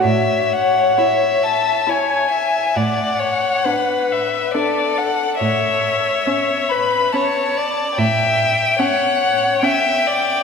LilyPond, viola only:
\new Staff \with { instrumentName = "Viola" } { \time 3/4 \key a \major \tempo 4 = 69 r4 e'4 e'4 | r4 d'4 d'4 | r4 cis'4 cis'4 | r4 cis'4 cis'4 | }